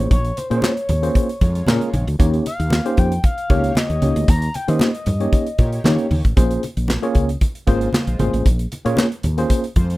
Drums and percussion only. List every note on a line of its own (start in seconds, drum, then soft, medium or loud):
0.11 kick loud
0.11 closed hi-hat medium
0.25 closed hi-hat soft
0.37 closed hi-hat medium
0.37 muted conga medium
0.51 closed hi-hat medium
0.62 snare loud
0.62 clap loud
0.62 high conga medium
0.77 closed hi-hat soft
0.89 closed hi-hat medium
0.89 low conga medium
1.03 closed hi-hat medium
1.15 kick loud
1.15 closed hi-hat medium
1.15 muted conga medium
1.29 closed hi-hat soft
1.41 kick medium
1.41 closed hi-hat medium
1.41 muted conga medium
1.55 closed hi-hat medium
1.66 snare loud
1.66 clap medium
1.66 high conga medium
1.81 closed hi-hat soft
1.94 closed hi-hat medium
1.94 high conga medium
2.08 closed hi-hat medium
2.20 kick loud
2.20 closed hi-hat medium
2.34 closed hi-hat soft
2.46 closed hi-hat loud
2.46 muted conga medium
2.60 closed hi-hat medium
2.70 snare loud
2.70 clap loud
2.70 high conga medium
2.86 closed hi-hat soft
2.97 kick medium
2.97 closed hi-hat medium
3.12 closed hi-hat medium
3.24 kick loud
3.24 closed hi-hat medium
3.24 muted conga medium
3.38 closed hi-hat medium
3.50 kick medium
3.50 closed hi-hat medium
3.50 muted conga medium
3.64 closed hi-hat soft
3.75 snare loud
3.75 clap medium
3.75 high conga medium
3.90 closed hi-hat soft
4.02 closed hi-hat medium
4.02 high conga medium
4.16 closed hi-hat medium
4.28 kick loud
4.28 closed hi-hat medium
4.28 muted conga soft
4.42 closed hi-hat medium
4.54 closed hi-hat medium
4.54 muted conga soft
4.68 closed hi-hat medium
4.79 snare loud
4.79 clap loud
4.79 high conga medium
4.94 closed hi-hat soft
5.06 closed hi-hat medium
5.06 low conga medium
5.20 closed hi-hat medium
5.33 kick loud
5.33 closed hi-hat medium
5.33 muted conga medium
5.47 closed hi-hat soft
5.58 kick medium
5.58 closed hi-hat medium
5.58 muted conga medium
5.73 closed hi-hat medium
5.84 snare loud
5.84 clap medium
5.84 high conga medium
5.98 closed hi-hat soft
6.11 open hi-hat medium
6.11 high conga medium
6.25 kick medium
6.25 closed hi-hat medium
6.37 kick loud
6.37 closed hi-hat medium
6.37 muted conga soft
6.51 closed hi-hat soft
6.63 closed hi-hat medium
6.63 muted conga medium
6.77 closed hi-hat medium
6.88 snare loud
6.88 clap medium
6.88 high conga medium
7.03 closed hi-hat soft
7.15 kick medium
7.15 closed hi-hat medium
7.29 closed hi-hat medium
7.41 kick loud
7.41 closed hi-hat medium
7.41 muted conga medium
7.55 closed hi-hat soft
7.67 kick medium
7.67 closed hi-hat medium
7.67 muted conga medium
7.81 closed hi-hat soft
7.93 snare loud
7.93 clap medium
7.93 high conga medium
8.07 closed hi-hat soft
8.19 closed hi-hat medium
8.19 high conga medium
8.34 closed hi-hat medium
8.46 kick loud
8.46 closed hi-hat loud
8.46 muted conga soft
8.59 closed hi-hat medium
8.72 closed hi-hat medium
8.72 muted conga soft
8.86 closed hi-hat medium
8.97 snare loud
8.97 clap loud
8.97 high conga medium
9.12 closed hi-hat soft
9.23 closed hi-hat medium
9.23 low conga medium
9.38 closed hi-hat medium
9.50 kick loud
9.50 closed hi-hat medium
9.50 muted conga medium
9.64 closed hi-hat medium
9.76 kick medium
9.76 closed hi-hat medium
9.76 muted conga medium
9.90 closed hi-hat soft